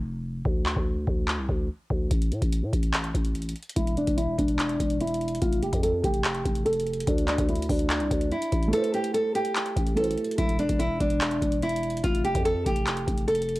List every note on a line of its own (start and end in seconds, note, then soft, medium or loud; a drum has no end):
0.00 0.43 F1 loud
0.45 0.75 D2 loud
0.45 kick loud
0.66 clap medium
0.76 1.06 D2 loud
0.76 kick medium
1.07 1.40 D2 loud
1.07 kick medium
1.28 clap loud
1.38 1.48 C2 loud
1.49 1.69 D2 loud
1.49 kick medium
1.90 2.10 D2 loud
1.90 kick medium
2.11 2.33 A1 loud
2.11 kick loud
2.11 closed hi-hat medium
2.22 closed hi-hat medium
2.31 2.41 A2 loud
2.31 closed hi-hat medium
2.42 2.64 A1 loud
2.42 kick loud
2.42 closed hi-hat medium
2.52 closed hi-hat medium
2.62 2.72 A2 loud
2.73 3.13 A1 loud
2.73 kick medium
2.73 closed hi-hat medium
2.83 closed hi-hat medium
2.94 clap loud
2.94 closed hi-hat medium
3.04 closed hi-hat medium
3.14 3.54 A1 loud
3.14 kick medium
3.14 closed hi-hat medium
3.25 closed hi-hat medium
3.35 closed hi-hat medium
3.42 closed hi-hat medium
3.49 closed hi-hat medium
3.56 closed hi-hat soft
3.63 closed hi-hat medium
3.69 closed hi-hat medium
3.76 4.06 E1 loud
3.76 3.94 E4 medium
3.76 kick loud
3.76 closed hi-hat medium
3.87 closed hi-hat medium
3.97 4.16 D4 medium
3.97 closed hi-hat medium
4.07 4.37 E1 loud
4.07 kick loud
4.07 closed hi-hat medium
4.17 4.36 E4 medium
4.17 closed hi-hat medium
4.38 4.78 E1 loud
4.38 4.97 D4 medium
4.38 kick medium
4.38 closed hi-hat medium
4.48 closed hi-hat medium
4.59 clap loud
4.59 closed hi-hat medium
4.69 closed hi-hat medium
4.80 5.39 E1 loud
4.80 kick medium
4.80 closed hi-hat medium
4.90 closed hi-hat medium
5.01 5.40 E4 medium
5.01 closed hi-hat medium
5.07 closed hi-hat medium
5.14 closed hi-hat medium
5.21 closed hi-hat soft
5.28 closed hi-hat medium
5.35 closed hi-hat medium
5.42 5.72 F1 loud
5.42 5.60 F4 medium
5.42 kick loud
5.42 closed hi-hat medium
5.53 closed hi-hat medium
5.62 5.81 G4 medium
5.62 closed hi-hat medium
5.73 6.03 F2 loud
5.73 kick loud
5.73 closed hi-hat medium
5.83 6.01 A4 medium
5.83 closed hi-hat medium
6.04 6.44 F1 loud
6.04 6.62 G4 medium
6.04 kick medium
6.04 closed hi-hat medium
6.14 closed hi-hat medium
6.24 clap loud
6.24 closed hi-hat medium
6.35 closed hi-hat medium
6.45 7.05 F1 loud
6.45 kick medium
6.45 closed hi-hat medium
6.55 closed hi-hat medium
6.65 7.05 A4 medium
6.65 closed hi-hat medium
6.73 closed hi-hat medium
6.80 closed hi-hat medium
6.87 closed hi-hat soft
6.93 closed hi-hat medium
7.00 closed hi-hat medium
7.07 7.37 D2 loud
7.07 7.26 D4 medium
7.07 kick loud
7.07 closed hi-hat medium
7.18 closed hi-hat medium
7.27 7.46 D4 medium
7.27 clap medium
7.27 closed hi-hat medium
7.38 7.68 D2 loud
7.38 kick loud
7.38 closed hi-hat medium
7.49 7.67 E4 medium
7.49 closed hi-hat soft
7.55 closed hi-hat medium
7.62 closed hi-hat medium
7.69 8.02 D2 loud
7.69 8.28 D4 medium
7.69 kick medium
7.69 open hi-hat medium
7.79 closed hi-hat medium
7.90 clap loud
7.90 closed hi-hat medium
8.00 8.10 C2 loud
8.00 closed hi-hat medium
8.11 8.31 D2 loud
8.11 kick medium
8.11 closed hi-hat medium
8.21 closed hi-hat medium
8.31 8.71 E4 medium
8.31 closed hi-hat soft
8.42 closed hi-hat medium
8.52 8.72 A1 loud
8.52 kick medium
8.52 closed hi-hat medium
8.62 closed hi-hat soft
8.68 9.92 A3 medium
8.68 9.94 E4 medium
8.73 8.91 A4 loud
8.73 9.95 B4 medium
8.73 closed hi-hat medium
8.77 9.97 C5 medium
8.84 closed hi-hat medium
8.94 9.12 G4 medium
8.94 closed hi-hat medium
9.04 closed hi-hat medium
9.14 9.32 A4 medium
9.14 closed hi-hat medium
9.35 9.93 G4 medium
9.35 closed hi-hat medium
9.45 closed hi-hat medium
9.55 clap loud
9.55 closed hi-hat medium
9.66 closed hi-hat medium
9.76 10.16 A1 loud
9.76 kick medium
9.76 closed hi-hat medium
9.87 closed hi-hat medium
9.95 10.37 A3 soft
9.95 10.38 E4 medium
9.95 10.36 A4 medium
9.95 10.39 B4 soft
9.95 closed hi-hat medium
10.00 10.40 C5 medium
10.00 closed hi-hat medium
10.11 closed hi-hat medium
10.18 closed hi-hat soft
10.24 closed hi-hat medium
10.31 closed hi-hat medium
10.38 10.68 E1 loud
10.38 10.56 E4 medium
10.38 kick loud
10.38 closed hi-hat medium
10.49 closed hi-hat medium
10.59 10.78 D4 medium
10.59 closed hi-hat medium
10.69 10.99 E1 loud
10.69 kick loud
10.69 closed hi-hat medium
10.79 10.98 E4 medium
10.79 closed hi-hat medium
11.00 11.40 E1 loud
11.00 11.59 D4 medium
11.00 kick loud
11.00 closed hi-hat medium
11.10 closed hi-hat medium
11.21 clap loud
11.21 closed hi-hat medium
11.31 closed hi-hat medium
11.42 12.01 E1 loud
11.42 kick medium
11.42 closed hi-hat medium
11.52 closed hi-hat medium
11.62 12.02 E4 medium
11.62 closed hi-hat medium
11.69 closed hi-hat medium
11.76 closed hi-hat medium
11.83 closed hi-hat soft
11.90 closed hi-hat medium
11.97 closed hi-hat medium
12.04 12.34 F1 loud
12.04 12.22 F4 medium
12.04 kick loud
12.04 closed hi-hat medium
12.15 closed hi-hat medium
12.24 12.43 G4 medium
12.24 closed hi-hat medium
12.35 12.65 F2 loud
12.35 kick loud
12.35 closed hi-hat medium
12.45 12.63 A4 medium
12.45 closed hi-hat medium
12.66 13.06 F1 loud
12.66 13.24 G4 medium
12.66 kick loud
12.66 closed hi-hat medium
12.76 closed hi-hat medium
12.87 clap loud
12.87 closed hi-hat medium
12.97 closed hi-hat medium
13.07 13.60 F1 loud
13.07 kick medium
13.07 closed hi-hat medium
13.18 closed hi-hat medium
13.28 13.60 A4 medium
13.28 closed hi-hat medium
13.35 closed hi-hat medium
13.42 closed hi-hat medium
13.49 closed hi-hat soft
13.56 closed hi-hat medium